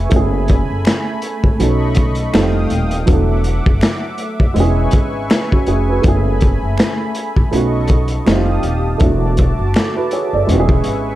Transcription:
Already playing: G#3 B3 C#4 E4 G#4 B4 E5 G#5 C#6
0.10 F#1 A3 B3 C#4 G#5 B5, kick, closed hi-hat
0.14 E4 G#4
0.48 kick, closed hi-hat
0.70 F#1
0.85 finger snap, snare, closed hi-hat
0.87 finger snap
1.22 closed hi-hat
1.44 G#1, kick
1.59 B1 F#3 B3 C#4 D#4 A4 D#5 B5 C#6, closed hi-hat
1.95 kick, closed hi-hat
2.15 closed hi-hat
2.33 F1 G3 C4 D#4 F4 A4 F5 G5 D#6, finger snap, snare, closed hi-hat
2.70 D#1, closed hi-hat
2.91 closed hi-hat
3.06 E1 F#3 B3 D4 E5 F#5 D6, kick, closed hi-hat
3.10 E4 A4
3.44 closed hi-hat
3.66 F#1, kick
3.81 finger snap, snare, closed hi-hat
3.83 finger snap
4.18 closed hi-hat
4.40 F#1, kick
4.54 E1 G#3 B3 C#4 B4 G#5 C#6, closed hi-hat
4.59 D4 G#4
4.65 E4
4.91 G#1, kick, closed hi-hat
5.30 finger snap, snare, closed hi-hat
5.52 C#4 F#4, kick
5.67 F1 C#4 G#4, closed hi-hat
5.90 F#4 B4
6.02 F#1 A3 B3 C#4 B5, kick, closed hi-hat
6.07 E4 G#4
6.41 kick, closed hi-hat
6.63 F#1
6.78 finger snap, snare, closed hi-hat
6.80 finger snap
7.15 closed hi-hat
7.36 G#1, kick
7.51 B1 A3 B3 C#4 D#4 F#4 A4 D#5 C#6, closed hi-hat
7.88 kick, closed hi-hat
8.08 closed hi-hat
8.26 F1 G3 A3 C4 D#4 E4 G4 F5 A5 D#6, finger snap, snare, closed hi-hat
8.35 F4
8.63 D#1, closed hi-hat
8.98 E1 A3 B3 D4 F#4 E5 A5 D6, kick, closed hi-hat
9.03 E4 F#4
9.37 kick, closed hi-hat
9.59 F#1
9.74 E4 A4, finger snap, snare, closed hi-hat
9.77 finger snap
9.97 F#4 B4
10.11 G#4 C#5, closed hi-hat
10.33 F#1 A4 D5
10.47 E1 G#3 B3 C#4 B4 G#5 C#6, closed hi-hat
10.52 E4 G4
10.60 G#4
10.69 kick
10.84 G#1, closed hi-hat

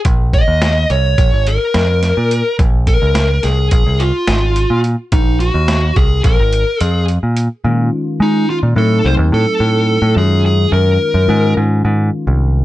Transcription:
0.05 A#1, kick, closed hi-hat
0.33 D#5, kick, closed hi-hat
0.48 D#2
0.62 snare, closed hi-hat
0.90 C2 C#5, closed hi-hat
1.18 A#1, kick, closed hi-hat
1.33 G#1
1.47 A#4, closed hi-hat
1.74 F2, snare, closed hi-hat
2.03 snare, closed hi-hat
2.17 A#2
2.31 closed hi-hat
2.59 A#1, kick, closed hi-hat
2.87 A#4, kick, closed hi-hat
3.02 C#2
3.15 snare, closed hi-hat
3.43 C2 G#4, snare, closed hi-hat
3.71 A#1, kick, closed hi-hat
3.86 C2
4.00 F4, closed hi-hat
4.28 G#1, snare, closed hi-hat
4.56 closed hi-hat
4.70 A#2
4.84 closed hi-hat
5.12 A#1 D#4, kick, closed hi-hat
5.40 F#4, closed hi-hat
5.54 D#2
5.68 snare, closed hi-hat
5.96 C2 G#4, kick, closed hi-hat
6.24 A#1 A#4, kick, closed hi-hat
6.39 G#1
6.53 closed hi-hat
6.81 F2 G#4, closed hi-hat
7.08 closed hi-hat
7.23 A#2
7.37 closed hi-hat
7.64 A#2 D#3 G#3 C#4 F4
8.20 G#3 D#4
8.50 F4
8.63 A#2
8.76 A2 F#3 A3 C4 D#4 A4
9.05 C2 C5
9.19 D#2
9.32 A2 A4
9.60 A2
10.02 A2
10.15 F#2 D#3 G#3 C#4 F4 G#4
10.46 G#4
10.72 F#2 A#4
11.14 F#2
11.28 G#2 D#3 G#3 C#4 F4
11.57 G#2
11.85 G#2
12.27 C2

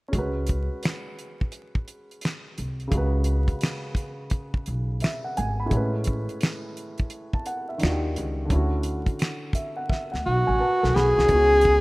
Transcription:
0.08 G#3 C#4
0.13 C#2 F#4, kick, closed hi-hat
0.18 B4
0.47 kick, closed hi-hat
0.83 finger snap, snare, closed hi-hat
1.19 closed hi-hat
1.41 kick
1.52 closed hi-hat
1.75 kick
1.88 closed hi-hat
2.11 closed hi-hat
2.21 finger snap, snare, closed hi-hat
2.58 C2, closed hi-hat
2.80 closed hi-hat
2.88 C#3 G#3
2.92 C#2 F#4, kick, closed hi-hat
2.97 B4
3.24 closed hi-hat
3.48 kick, closed hi-hat
3.61 finger snap, snare, closed hi-hat
3.95 kick, closed hi-hat
4.30 kick, closed hi-hat
4.54 kick
4.66 B1, closed hi-hat
5.00 E5, finger snap, snare, closed hi-hat
5.24 F#5
5.37 G#1 G#5, closed hi-hat
5.60 B5
5.66 A2 G#3
5.71 A1 C#4, kick, closed hi-hat
5.76 B4
6.04 kick, closed hi-hat
6.29 closed hi-hat
6.41 finger snap, snare, closed hi-hat
6.77 closed hi-hat
6.98 kick, closed hi-hat
7.10 closed hi-hat
7.33 A5, kick
7.46 F#5, closed hi-hat
7.69 E5
7.78 D#3 D4 F4, closed hi-hat
7.83 D#2 F#4, finger snap, snare
7.90 G4
8.16 C#2, closed hi-hat
8.45 D3 C#4
8.50 D2 E4, kick, closed hi-hat
8.56 F#4
8.83 closed hi-hat
9.06 kick, closed hi-hat
9.19 finger snap, snare, closed hi-hat
9.53 E5, kick, closed hi-hat
9.77 F#5
9.89 E5, kick, snare
10.12 D2 F#5, snare
10.26 B1 F#4
10.47 A1 G#5
10.60 B4 A5
10.82 B1 A4, snare
10.95 B1 F#4 G#4 B5, snare
11.17 C2 E4, snare
11.25 G#3 C#4, kick, closed hi-hat
11.30 C#2 B3
11.35 F#4
11.61 kick, closed hi-hat

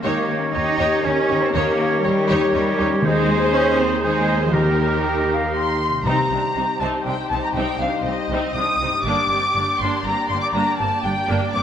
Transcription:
Already playing: A#3 C#4 A#4
0.03 D#2 D#3 A#3 D#4 G4 C#5 D#5
0.20 A#3
0.38 C#4
0.53 D#2 D#4 G4 C#5 D#5
0.71 G4
0.78 D#2 D#4 G4 C#5
0.88 D#4
1.03 D#2 C#4 D#4 G4 A#4 C#5 D#5
1.21 A#3
1.29 D#2 D#4 G4 C#5
1.38 C#4
1.42 C4
1.54 D#2 D#3 A#3 D#4 G4 C#5 D#5
1.70 A#3
1.87 C#4
2.03 D#2 G3 D#4 G4 C#5 D#5
2.21 G4
2.28 D#2 D#4 G4 C#5
2.37 D#4
2.53 D#2 G3 C#4 D#4 G4 C#5 D#5
2.70 A#3
2.78 D#2 D#4 G4 C#5
2.87 C#4
3.02 D#2 D#3 G#3 D#4 G#4 C5 D#5
3.20 C4
3.37 D#4
3.54 C#4 G#4
3.70 C5
3.80 C4
3.87 G#4
4.02 G#3 D#4 G#4 C5 D#5
4.36 D#4
4.44 F3
4.52 D#3 D#4 G4 A#4 D#5
4.87 D#4
5.05 G4 G5
5.22 A#4
5.33 F5
5.39 G4
5.54 D#4 C6
5.73 A#3
5.88 C3 D#4
5.92 C4
5.97 D#4
6.01 C2 C3 G3 G4
6.05 C3 C4 D#4 G4 C5 A#5
6.30 C2 C3 C4 D4
6.56 C2 C3 C4 D#4
6.80 C2 C3 C4 D#4 A5
7.05 C2 C3 C4 D4 G5
7.29 C2 C3 C4 D#4 A5
7.43 A#5
7.53 C2 C3 C4 D#4 G5
7.80 C2 C3 C4 D4 F5
8.03 C2 C3 D#5
8.07 C4 D#4
8.29 C2 C3 C4 D#4
8.54 C2 C3 C4 D4 D#6
8.78 C2 C3
8.83 C4 D#4
8.87 G2
8.92 A#3
8.97 D4
9.01 G1 G4 D5 D6
9.06 G2 A#3 D4 G4 D6
9.29 G1 G2 A#3 C4
9.54 G1 G2 A#3 D4
9.79 G1 G2 A#3 D4 C6
10.04 G1 G2 A#3 C4 A#5
10.29 G1 G2 A#3 D4 C6
10.41 D6
10.52 G1 G2 A#3 D4 A#5
10.78 G1 G2 A#3 C4 A5
11.03 G1 G2 A#3 D4 G5
11.28 G1 G2 A#3 D4
11.53 G1 G2 A#3 C4 D6

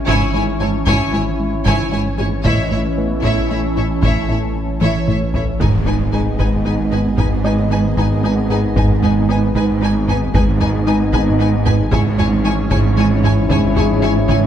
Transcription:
Already playing: G#1 E3 G#3 C#4 E4 C#5
0.07 G#1 G#2 C#3 E4 C#5 G#5, taiko
0.34 G#1 G#2 G#3 E4 C#5 G#5
0.60 G#1 G#2 G#3 E4 C#5 G#5 A5
0.86 G#1 G#2 C#3 E4 C#5 G#5, taiko
1.13 G#1 G#2 G#3 E4 C#5 G#5
1.40 G#3
1.65 G#1 G#2 C#3 E4 C#5 G#5, taiko
1.92 G#1 G#2 G#3 E4 C#5 G#5
2.18 G#1 G#2 G#3 E4 C#5 G#5
2.44 A1 A2 A3 C#4 E4 A4 C#5 D#5 E5, taiko
2.71 A1 A2 A3 E4 C#5 E5
2.98 A3 B3 B4
3.24 A1 A2 A3 E4 C#5 E5, taiko
3.50 A1 A2 A3 E4 C#5 E5
3.76 A1 A2 A3 E4 C#5 E5
4.02 A1 A2 A3 E4 C#5 E5, taiko
4.29 A1 A2 A3 E4 A4 C#5 E5
4.56 A3
4.81 A1 A2 A3 E4 C#5 E5, taiko high
5.08 A1 A2 A3 E4 C#5 E5, taiko mid
5.34 A1 A2 A3 E4 C#5 E5, taiko low
5.60 G#1 G#2 D#3 G#3 B3 D#4 G#4 B4 D#5 G#5, taiko, impact
5.86 G#3 D#4 B4 G#5
6.12 G#3 D#4 G#4 B4 G#5
6.39 G#1 G#2 G#3 D#4 B4 G#5, taiko
6.65 G#3 D#4 B4 G#5
6.91 G#2 D#4 B4 G#5
7.17 G#1 G#2 G#3 D#4 B4 G#5, taiko
7.44 G#3 D#4 B4 D#5 G#5
7.70 G#3 D#4 B4 G#5
7.97 G#1 G#2 G#3 D#4 B4 G#5, taiko
8.23 G#3 D#4 B4 G#5
8.50 G#2 D#4 G#4 B4 G#5
8.76 G#1 G#2 G#3 D#4 B4 G#5, taiko
9.02 G#3 D#4 B4 G#5, taiko low-mid
9.29 G#3 D#4 B4 G#5
9.55 G#1 G#2 G#3 D#4 B4 G#5, taiko
9.81 G#3 D#4 B4 G#5
10.08 G#2 D#4 B4 G#5, taiko low-mid
10.34 G#1 G#2 D#3 G#3 B3 D#4 G#4 B4 D#5 G#5, taiko
10.60 G#3 D#4 B4 G#5, taiko low-mid
10.87 G#3 D#4 B4 G#5
11.12 G#1 G#2 G#3 D#4 B4 G#5, taiko
11.39 G#3 D#4 B4 G#5
11.66 G#2 D#4 B4 G#5, taiko low-mid
11.92 G#1 G#2 C#3 E3 C#4 E4 C#5 G#5, taiko
12.18 G#3 E4 C#5 G#5, taiko low-mid
12.44 G#3 E4 C#5 G#5
12.70 G#1 G#2 C#3 E4 C#5 G#5, taiko
12.97 G#3 E4 C#5 G#5
13.23 G#2 E4 C#5 G#5, taiko low-mid
13.50 G#1 G#2 C#3 E4 C#5 G#5, taiko
13.76 G#3 E4 G#4 C#5 G#5, taiko low-mid
14.02 G#3 E4 C#5 G#5
14.28 G#1 G#2 C#3 E4 C#5 G#5, taiko

